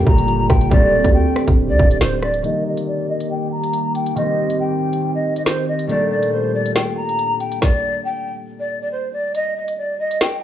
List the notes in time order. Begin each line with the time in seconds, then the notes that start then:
Already playing: A#2 G3 A3 A#3 C4 D4 G4
0.06 G1 A#5, kick
0.18 closed hi-hat
0.28 closed hi-hat
0.49 G1 G5, kick, cross-stick, closed hi-hat
0.61 closed hi-hat
0.70 D1 D3 G3 A3 C4 D4 G4 D5, kick, closed hi-hat
1.04 D2, kick, closed hi-hat
1.14 G5
1.36 cross-stick
1.48 D1, kick, closed hi-hat
1.69 D2 D5
1.79 D1, kick
1.91 D5, closed hi-hat
2.01 D1 C5, snare, closed hi-hat
2.22 D5, cross-stick
2.34 closed hi-hat
2.42 D#3 G3 A#3 D#4 G4 D#5, closed hi-hat
2.66 D#5
2.77 closed hi-hat
2.87 D5
3.09 D#5
3.20 closed hi-hat
3.31 G5
3.52 A#5
3.64 closed hi-hat
3.73 closed hi-hat
3.95 G5, closed hi-hat
4.06 closed hi-hat
4.15 D#3 G3 C4 D#4 G4 D#5, closed hi-hat
4.50 closed hi-hat
4.60 G5
4.93 closed hi-hat
5.15 D#5
5.36 D#5, closed hi-hat
5.46 C5, snare, closed hi-hat
5.68 D#5
5.79 closed hi-hat
5.87 A#2 G3 A3 A#3 D4 G4 D5, closed hi-hat
6.10 D5
6.23 closed hi-hat
6.33 C5
6.54 D5
6.66 closed hi-hat
6.76 G5, snare
6.97 A#5
7.09 closed hi-hat
7.19 closed hi-hat
7.40 G5, closed hi-hat
7.52 closed hi-hat
7.62 D5, kick, snare
8.05 G5
8.60 D5
8.82 D5
8.92 C5
9.13 D5
9.35 D#5, closed hi-hat
9.57 D#5
9.68 closed hi-hat
9.78 D5
9.99 D#5
10.11 closed hi-hat
10.21 G5, snare